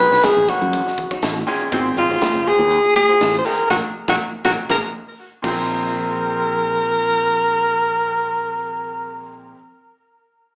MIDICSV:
0, 0, Header, 1, 8, 480
1, 0, Start_track
1, 0, Tempo, 495458
1, 1670, Time_signature, 4, 2, 24, 8
1, 10221, End_track
2, 0, Start_track
2, 0, Title_t, "Alto saxophone"
2, 0, Program_c, 0, 65
2, 0, Note_on_c, 0, 71, 102
2, 230, Note_on_c, 0, 68, 88
2, 245, Note_off_c, 0, 71, 0
2, 476, Note_on_c, 0, 66, 73
2, 491, Note_off_c, 0, 68, 0
2, 1193, Note_off_c, 0, 66, 0
2, 1919, Note_on_c, 0, 65, 85
2, 2400, Note_on_c, 0, 68, 90
2, 2415, Note_off_c, 0, 65, 0
2, 2861, Note_off_c, 0, 68, 0
2, 2867, Note_on_c, 0, 68, 102
2, 3254, Note_off_c, 0, 68, 0
2, 3279, Note_on_c, 0, 72, 76
2, 3347, Note_on_c, 0, 70, 89
2, 3362, Note_off_c, 0, 72, 0
2, 3582, Note_off_c, 0, 70, 0
2, 3588, Note_on_c, 0, 66, 87
2, 3649, Note_off_c, 0, 66, 0
2, 3963, Note_on_c, 0, 66, 82
2, 4021, Note_off_c, 0, 66, 0
2, 4310, Note_on_c, 0, 66, 81
2, 4370, Note_off_c, 0, 66, 0
2, 4560, Note_on_c, 0, 70, 78
2, 4618, Note_off_c, 0, 70, 0
2, 5268, Note_on_c, 0, 70, 86
2, 9232, Note_off_c, 0, 70, 0
2, 10221, End_track
3, 0, Start_track
3, 0, Title_t, "Clean electric guitar"
3, 0, Program_c, 1, 27
3, 112, Note_on_c, 1, 73, 47
3, 119, Note_on_c, 1, 66, 40
3, 123, Note_on_c, 1, 63, 40
3, 223, Note_off_c, 1, 63, 0
3, 225, Note_off_c, 1, 66, 0
3, 229, Note_off_c, 1, 73, 0
3, 471, Note_on_c, 1, 58, 60
3, 474, Note_on_c, 1, 63, 61
3, 477, Note_on_c, 1, 66, 76
3, 480, Note_on_c, 1, 73, 69
3, 586, Note_off_c, 1, 73, 0
3, 590, Note_off_c, 1, 66, 0
3, 592, Note_off_c, 1, 63, 0
3, 598, Note_off_c, 1, 58, 0
3, 1077, Note_on_c, 1, 73, 46
3, 1085, Note_on_c, 1, 66, 51
3, 1088, Note_on_c, 1, 63, 43
3, 1187, Note_off_c, 1, 63, 0
3, 1187, Note_off_c, 1, 66, 0
3, 1188, Note_off_c, 1, 73, 0
3, 1191, Note_on_c, 1, 58, 78
3, 1198, Note_on_c, 1, 63, 83
3, 1199, Note_on_c, 1, 66, 82
3, 1200, Note_on_c, 1, 73, 88
3, 1340, Note_off_c, 1, 58, 0
3, 1343, Note_off_c, 1, 63, 0
3, 1344, Note_off_c, 1, 66, 0
3, 1344, Note_off_c, 1, 73, 0
3, 1674, Note_on_c, 1, 58, 79
3, 1679, Note_on_c, 1, 65, 79
3, 1682, Note_on_c, 1, 66, 77
3, 1683, Note_on_c, 1, 72, 80
3, 1821, Note_off_c, 1, 58, 0
3, 1823, Note_off_c, 1, 65, 0
3, 1825, Note_off_c, 1, 66, 0
3, 1825, Note_off_c, 1, 72, 0
3, 2042, Note_on_c, 1, 72, 57
3, 2046, Note_on_c, 1, 66, 49
3, 2051, Note_on_c, 1, 65, 36
3, 2145, Note_off_c, 1, 65, 0
3, 2146, Note_off_c, 1, 66, 0
3, 2149, Note_off_c, 1, 72, 0
3, 2393, Note_on_c, 1, 58, 61
3, 2396, Note_on_c, 1, 65, 69
3, 2397, Note_on_c, 1, 66, 65
3, 2398, Note_on_c, 1, 72, 76
3, 2507, Note_off_c, 1, 72, 0
3, 2510, Note_off_c, 1, 66, 0
3, 2513, Note_off_c, 1, 65, 0
3, 2517, Note_off_c, 1, 58, 0
3, 2994, Note_on_c, 1, 72, 46
3, 3002, Note_on_c, 1, 66, 43
3, 3006, Note_on_c, 1, 65, 41
3, 3100, Note_off_c, 1, 65, 0
3, 3104, Note_off_c, 1, 66, 0
3, 3106, Note_off_c, 1, 72, 0
3, 3110, Note_on_c, 1, 58, 74
3, 3112, Note_on_c, 1, 65, 66
3, 3116, Note_on_c, 1, 66, 82
3, 3117, Note_on_c, 1, 72, 69
3, 3258, Note_off_c, 1, 58, 0
3, 3259, Note_off_c, 1, 65, 0
3, 3261, Note_off_c, 1, 66, 0
3, 3262, Note_off_c, 1, 72, 0
3, 3586, Note_on_c, 1, 63, 78
3, 3592, Note_on_c, 1, 66, 79
3, 3593, Note_on_c, 1, 70, 74
3, 3669, Note_off_c, 1, 63, 0
3, 3669, Note_off_c, 1, 70, 0
3, 3671, Note_off_c, 1, 66, 0
3, 3956, Note_on_c, 1, 70, 89
3, 3961, Note_on_c, 1, 66, 73
3, 3965, Note_on_c, 1, 63, 72
3, 4030, Note_off_c, 1, 70, 0
3, 4031, Note_off_c, 1, 63, 0
3, 4031, Note_off_c, 1, 66, 0
3, 4309, Note_on_c, 1, 70, 79
3, 4313, Note_on_c, 1, 66, 74
3, 4317, Note_on_c, 1, 63, 68
3, 4391, Note_off_c, 1, 63, 0
3, 4391, Note_off_c, 1, 66, 0
3, 4391, Note_off_c, 1, 70, 0
3, 4546, Note_on_c, 1, 65, 79
3, 4552, Note_on_c, 1, 68, 75
3, 4556, Note_on_c, 1, 70, 76
3, 4630, Note_off_c, 1, 65, 0
3, 4631, Note_off_c, 1, 68, 0
3, 4631, Note_off_c, 1, 70, 0
3, 5282, Note_on_c, 1, 65, 67
3, 5311, Note_on_c, 1, 68, 69
3, 5344, Note_on_c, 1, 72, 71
3, 9285, Note_off_c, 1, 65, 0
3, 9315, Note_off_c, 1, 68, 0
3, 9347, Note_off_c, 1, 72, 0
3, 10221, End_track
4, 0, Start_track
4, 0, Title_t, "Grand piano"
4, 0, Program_c, 2, 0
4, 0, Note_on_c, 2, 46, 63
4, 0, Note_on_c, 2, 51, 62
4, 0, Note_on_c, 2, 56, 58
4, 0, Note_on_c, 2, 63, 71
4, 770, Note_off_c, 2, 46, 0
4, 773, Note_off_c, 2, 51, 0
4, 775, Note_off_c, 2, 56, 0
4, 778, Note_off_c, 2, 63, 0
4, 1420, Note_on_c, 2, 46, 80
4, 1424, Note_on_c, 2, 51, 68
4, 1431, Note_on_c, 2, 56, 72
4, 1435, Note_on_c, 2, 61, 80
4, 1622, Note_off_c, 2, 46, 0
4, 1625, Note_off_c, 2, 51, 0
4, 1628, Note_off_c, 2, 56, 0
4, 1630, Note_off_c, 2, 61, 0
4, 1663, Note_on_c, 2, 46, 73
4, 1667, Note_on_c, 2, 51, 75
4, 1672, Note_on_c, 2, 56, 70
4, 1674, Note_on_c, 2, 60, 89
4, 1864, Note_off_c, 2, 46, 0
4, 1866, Note_off_c, 2, 51, 0
4, 1868, Note_off_c, 2, 56, 0
4, 1869, Note_off_c, 2, 60, 0
4, 1908, Note_on_c, 2, 46, 63
4, 1910, Note_on_c, 2, 51, 58
4, 1916, Note_on_c, 2, 56, 55
4, 1920, Note_on_c, 2, 63, 74
4, 2692, Note_off_c, 2, 46, 0
4, 2693, Note_off_c, 2, 51, 0
4, 2696, Note_off_c, 2, 56, 0
4, 2698, Note_off_c, 2, 63, 0
4, 3339, Note_on_c, 2, 46, 64
4, 3348, Note_on_c, 2, 51, 63
4, 3349, Note_on_c, 2, 56, 62
4, 3352, Note_on_c, 2, 63, 68
4, 3541, Note_off_c, 2, 46, 0
4, 3546, Note_off_c, 2, 51, 0
4, 3546, Note_off_c, 2, 56, 0
4, 3548, Note_off_c, 2, 63, 0
4, 3585, Note_on_c, 2, 51, 78
4, 3586, Note_on_c, 2, 54, 83
4, 3587, Note_on_c, 2, 58, 89
4, 3667, Note_off_c, 2, 51, 0
4, 3668, Note_off_c, 2, 54, 0
4, 3668, Note_off_c, 2, 58, 0
4, 3958, Note_on_c, 2, 51, 91
4, 3960, Note_on_c, 2, 54, 93
4, 3961, Note_on_c, 2, 58, 93
4, 4030, Note_off_c, 2, 51, 0
4, 4031, Note_off_c, 2, 54, 0
4, 4031, Note_off_c, 2, 58, 0
4, 4315, Note_on_c, 2, 51, 90
4, 4316, Note_on_c, 2, 58, 80
4, 4318, Note_on_c, 2, 54, 94
4, 4393, Note_off_c, 2, 51, 0
4, 4394, Note_off_c, 2, 58, 0
4, 4395, Note_off_c, 2, 54, 0
4, 4551, Note_on_c, 2, 53, 74
4, 4552, Note_on_c, 2, 58, 82
4, 4555, Note_on_c, 2, 56, 75
4, 4631, Note_off_c, 2, 53, 0
4, 4632, Note_off_c, 2, 58, 0
4, 4633, Note_off_c, 2, 56, 0
4, 5254, Note_on_c, 2, 46, 66
4, 5267, Note_on_c, 2, 51, 64
4, 5280, Note_on_c, 2, 56, 61
4, 5297, Note_on_c, 2, 60, 83
4, 9218, Note_off_c, 2, 46, 0
4, 9232, Note_off_c, 2, 51, 0
4, 9245, Note_off_c, 2, 56, 0
4, 9261, Note_off_c, 2, 60, 0
4, 10221, End_track
5, 0, Start_track
5, 0, Title_t, "Fretless electric bass"
5, 0, Program_c, 3, 35
5, 121, Note_on_c, 3, 35, 72
5, 208, Note_off_c, 3, 35, 0
5, 356, Note_on_c, 3, 34, 77
5, 445, Note_off_c, 3, 34, 0
5, 598, Note_on_c, 3, 42, 86
5, 783, Note_off_c, 3, 42, 0
5, 1191, Note_on_c, 3, 33, 85
5, 1376, Note_off_c, 3, 33, 0
5, 1669, Note_on_c, 3, 32, 91
5, 1855, Note_off_c, 3, 32, 0
5, 1904, Note_on_c, 3, 32, 92
5, 2003, Note_off_c, 3, 32, 0
5, 2026, Note_on_c, 3, 32, 90
5, 2118, Note_off_c, 3, 32, 0
5, 2263, Note_on_c, 3, 30, 74
5, 2356, Note_off_c, 3, 30, 0
5, 2511, Note_on_c, 3, 39, 88
5, 2698, Note_off_c, 3, 39, 0
5, 3109, Note_on_c, 3, 33, 85
5, 3294, Note_off_c, 3, 33, 0
5, 3587, Note_on_c, 3, 34, 77
5, 3682, Note_off_c, 3, 34, 0
5, 3954, Note_on_c, 3, 34, 80
5, 4039, Note_off_c, 3, 34, 0
5, 4311, Note_on_c, 3, 34, 88
5, 4404, Note_off_c, 3, 34, 0
5, 4550, Note_on_c, 3, 34, 81
5, 4643, Note_off_c, 3, 34, 0
5, 5269, Note_on_c, 3, 34, 72
5, 9234, Note_off_c, 3, 34, 0
5, 10221, End_track
6, 0, Start_track
6, 0, Title_t, "Muted clean electric guitar strokes"
6, 232, Note_on_c, 9, 29, 37
6, 329, Note_off_c, 9, 29, 0
6, 355, Note_on_c, 9, 29, 33
6, 452, Note_off_c, 9, 29, 0
6, 597, Note_on_c, 9, 29, 40
6, 694, Note_off_c, 9, 29, 0
6, 839, Note_on_c, 9, 29, 39
6, 936, Note_off_c, 9, 29, 0
6, 952, Note_on_c, 9, 29, 32
6, 1049, Note_off_c, 9, 29, 0
6, 1431, Note_on_c, 9, 29, 37
6, 1527, Note_off_c, 9, 29, 0
6, 1559, Note_on_c, 9, 29, 48
6, 1656, Note_off_c, 9, 29, 0
6, 1916, Note_on_c, 9, 29, 34
6, 2013, Note_off_c, 9, 29, 0
6, 2280, Note_on_c, 9, 29, 39
6, 2377, Note_off_c, 9, 29, 0
6, 2518, Note_on_c, 9, 29, 38
6, 2615, Note_off_c, 9, 29, 0
6, 2757, Note_on_c, 9, 29, 46
6, 2854, Note_off_c, 9, 29, 0
6, 2876, Note_on_c, 9, 29, 31
6, 2973, Note_off_c, 9, 29, 0
6, 3350, Note_on_c, 9, 29, 40
6, 3447, Note_off_c, 9, 29, 0
6, 3476, Note_on_c, 9, 29, 41
6, 3573, Note_off_c, 9, 29, 0
6, 10221, End_track
7, 0, Start_track
7, 0, Title_t, "Muted fretless electric bass strokes"
7, 235, Note_on_c, 9, 29, 32
7, 332, Note_off_c, 9, 29, 0
7, 2148, Note_on_c, 9, 29, 29
7, 2245, Note_off_c, 9, 29, 0
7, 10221, End_track
8, 0, Start_track
8, 0, Title_t, "Drums"
8, 8, Note_on_c, 9, 62, 27
8, 105, Note_off_c, 9, 62, 0
8, 118, Note_on_c, 9, 42, 38
8, 121, Note_on_c, 9, 38, 32
8, 214, Note_off_c, 9, 42, 0
8, 218, Note_off_c, 9, 38, 0
8, 225, Note_on_c, 9, 42, 77
8, 229, Note_on_c, 9, 38, 99
8, 237, Note_on_c, 9, 63, 81
8, 322, Note_off_c, 9, 42, 0
8, 326, Note_off_c, 9, 38, 0
8, 334, Note_off_c, 9, 63, 0
8, 469, Note_on_c, 9, 42, 50
8, 470, Note_on_c, 9, 36, 65
8, 482, Note_on_c, 9, 63, 65
8, 566, Note_off_c, 9, 42, 0
8, 567, Note_off_c, 9, 36, 0
8, 579, Note_off_c, 9, 63, 0
8, 595, Note_on_c, 9, 42, 38
8, 692, Note_off_c, 9, 42, 0
8, 710, Note_on_c, 9, 36, 69
8, 710, Note_on_c, 9, 42, 83
8, 720, Note_on_c, 9, 62, 23
8, 720, Note_on_c, 9, 64, 53
8, 807, Note_off_c, 9, 36, 0
8, 807, Note_off_c, 9, 42, 0
8, 816, Note_off_c, 9, 62, 0
8, 816, Note_off_c, 9, 64, 0
8, 843, Note_on_c, 9, 38, 30
8, 940, Note_off_c, 9, 38, 0
8, 946, Note_on_c, 9, 42, 55
8, 949, Note_on_c, 9, 36, 68
8, 956, Note_on_c, 9, 64, 58
8, 1043, Note_off_c, 9, 42, 0
8, 1046, Note_off_c, 9, 36, 0
8, 1053, Note_off_c, 9, 64, 0
8, 1074, Note_on_c, 9, 42, 33
8, 1075, Note_on_c, 9, 36, 71
8, 1171, Note_off_c, 9, 42, 0
8, 1172, Note_off_c, 9, 36, 0
8, 1186, Note_on_c, 9, 42, 81
8, 1190, Note_on_c, 9, 38, 100
8, 1196, Note_on_c, 9, 63, 63
8, 1283, Note_off_c, 9, 42, 0
8, 1287, Note_off_c, 9, 38, 0
8, 1293, Note_off_c, 9, 63, 0
8, 1313, Note_on_c, 9, 42, 33
8, 1410, Note_off_c, 9, 42, 0
8, 1425, Note_on_c, 9, 46, 69
8, 1434, Note_on_c, 9, 62, 25
8, 1522, Note_off_c, 9, 46, 0
8, 1531, Note_off_c, 9, 62, 0
8, 1558, Note_on_c, 9, 42, 35
8, 1655, Note_off_c, 9, 42, 0
8, 1668, Note_on_c, 9, 36, 102
8, 1669, Note_on_c, 9, 42, 81
8, 1765, Note_off_c, 9, 36, 0
8, 1766, Note_off_c, 9, 42, 0
8, 1795, Note_on_c, 9, 42, 36
8, 1892, Note_off_c, 9, 42, 0
8, 1911, Note_on_c, 9, 42, 60
8, 1920, Note_on_c, 9, 62, 28
8, 2008, Note_off_c, 9, 42, 0
8, 2016, Note_off_c, 9, 62, 0
8, 2038, Note_on_c, 9, 42, 36
8, 2134, Note_off_c, 9, 42, 0
8, 2147, Note_on_c, 9, 42, 70
8, 2151, Note_on_c, 9, 38, 102
8, 2158, Note_on_c, 9, 63, 84
8, 2244, Note_off_c, 9, 42, 0
8, 2248, Note_off_c, 9, 38, 0
8, 2255, Note_off_c, 9, 63, 0
8, 2274, Note_on_c, 9, 42, 36
8, 2371, Note_off_c, 9, 42, 0
8, 2389, Note_on_c, 9, 42, 47
8, 2486, Note_off_c, 9, 42, 0
8, 2627, Note_on_c, 9, 42, 73
8, 2635, Note_on_c, 9, 62, 26
8, 2723, Note_off_c, 9, 42, 0
8, 2732, Note_off_c, 9, 62, 0
8, 2753, Note_on_c, 9, 42, 34
8, 2849, Note_off_c, 9, 42, 0
8, 2866, Note_on_c, 9, 42, 54
8, 2867, Note_on_c, 9, 36, 75
8, 2872, Note_on_c, 9, 63, 65
8, 2963, Note_off_c, 9, 36, 0
8, 2963, Note_off_c, 9, 42, 0
8, 2969, Note_off_c, 9, 63, 0
8, 2995, Note_on_c, 9, 42, 32
8, 3092, Note_off_c, 9, 42, 0
8, 3108, Note_on_c, 9, 42, 73
8, 3110, Note_on_c, 9, 63, 73
8, 3112, Note_on_c, 9, 38, 89
8, 3205, Note_off_c, 9, 42, 0
8, 3207, Note_off_c, 9, 63, 0
8, 3209, Note_off_c, 9, 38, 0
8, 3232, Note_on_c, 9, 42, 31
8, 3329, Note_off_c, 9, 42, 0
8, 3347, Note_on_c, 9, 46, 74
8, 3356, Note_on_c, 9, 62, 25
8, 3444, Note_off_c, 9, 46, 0
8, 3453, Note_off_c, 9, 62, 0
8, 3470, Note_on_c, 9, 42, 37
8, 3567, Note_off_c, 9, 42, 0
8, 3588, Note_on_c, 9, 36, 85
8, 3590, Note_on_c, 9, 38, 85
8, 3593, Note_on_c, 9, 63, 88
8, 3685, Note_off_c, 9, 36, 0
8, 3687, Note_off_c, 9, 38, 0
8, 3690, Note_off_c, 9, 63, 0
8, 3954, Note_on_c, 9, 36, 86
8, 3957, Note_on_c, 9, 38, 89
8, 3957, Note_on_c, 9, 63, 85
8, 4051, Note_off_c, 9, 36, 0
8, 4054, Note_off_c, 9, 38, 0
8, 4054, Note_off_c, 9, 63, 0
8, 4308, Note_on_c, 9, 36, 77
8, 4312, Note_on_c, 9, 38, 69
8, 4316, Note_on_c, 9, 63, 90
8, 4405, Note_off_c, 9, 36, 0
8, 4409, Note_off_c, 9, 38, 0
8, 4413, Note_off_c, 9, 63, 0
8, 4549, Note_on_c, 9, 36, 78
8, 4555, Note_on_c, 9, 38, 89
8, 4557, Note_on_c, 9, 63, 83
8, 4646, Note_off_c, 9, 36, 0
8, 4652, Note_off_c, 9, 38, 0
8, 4654, Note_off_c, 9, 63, 0
8, 5271, Note_on_c, 9, 36, 96
8, 5271, Note_on_c, 9, 62, 73
8, 5275, Note_on_c, 9, 49, 76
8, 5368, Note_off_c, 9, 36, 0
8, 5368, Note_off_c, 9, 62, 0
8, 5372, Note_off_c, 9, 49, 0
8, 10221, End_track
0, 0, End_of_file